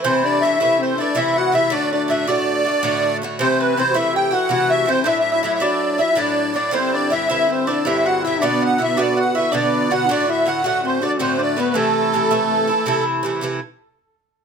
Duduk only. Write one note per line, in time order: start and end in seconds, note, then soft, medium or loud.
0.05 0.24 C4 medium
0.24 0.61 D4 medium
0.60 0.82 E4 medium
0.80 0.99 C4 medium
0.98 1.15 D4 medium
1.16 1.39 E4 medium
1.38 1.55 F#4 loud
1.55 1.75 E4 loud
1.73 1.93 D4 medium
1.93 2.26 D4 medium
2.28 3.18 D4 medium
3.40 3.75 C4 medium
3.77 3.83 C4 medium
3.90 3.97 F#4 medium
3.96 4.17 E4 medium
4.16 4.35 G4 loud
4.33 4.51 F#4 medium
4.52 4.91 F#4 loud
4.89 5.08 C4 loud
5.07 5.20 E4 medium
5.33 5.44 E4 medium
5.45 5.62 E4 medium
5.63 6.03 D4 medium
6.01 6.11 E4 medium
6.12 6.20 E4 medium
6.18 6.57 D4 medium
6.74 6.97 C4 medium
6.96 7.12 D4 medium
7.13 7.28 E4 medium
7.29 7.50 E4 medium
7.49 7.69 C4 loud
7.68 7.88 D4 medium
7.86 8.07 E4 medium
8.06 8.24 F#4 loud
8.23 8.42 E4 medium
8.40 8.81 D4 medium
8.79 8.99 E4 medium
8.97 9.15 D4 medium
9.16 9.33 F#4 medium
9.34 9.53 E4 medium
9.52 9.91 D4 medium
9.90 10.08 F#4 medium
10.07 10.27 D4 medium
10.28 10.61 E4 medium
10.64 10.85 F#4 medium
10.83 11.02 C4 medium
11.01 11.21 D4 medium
11.20 11.40 C4 medium
11.38 11.57 D4 medium
11.58 11.77 B3 medium
11.75 13.07 A3 medium